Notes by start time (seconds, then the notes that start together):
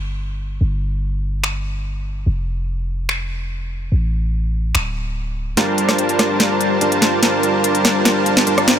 Already playing: G1
0.61 G1
1.44 finger snap
2.26 F1
3.09 finger snap
3.92 A1
4.75 D1, finger snap
5.57 G1 G3 D4 F4 A#4 C5 A5, snare, closed hi-hat
5.78 closed hi-hat
5.89 cross-stick, snare
5.99 closed hi-hat
6.09 closed hi-hat
6.19 cross-stick, snare, closed hi-hat
6.40 snare, closed hi-hat
6.61 closed hi-hat
6.81 G1 G3 D4 F4 A#4 C5 A5, closed hi-hat
6.92 closed hi-hat
7.02 snare, closed hi-hat
7.23 G1 G3 D4 F4 A#4 C5 A5, snare, closed hi-hat
7.43 closed hi-hat
7.64 closed hi-hat
7.75 closed hi-hat
7.85 cross-stick, snare, closed hi-hat
8.05 snare, closed hi-hat
8.26 closed hi-hat
8.37 snare
8.47 G1 G3 D4 F4 A#4 C5 A5, closed hi-hat
8.58 cross-stick, closed hi-hat
8.68 snare, closed hi-hat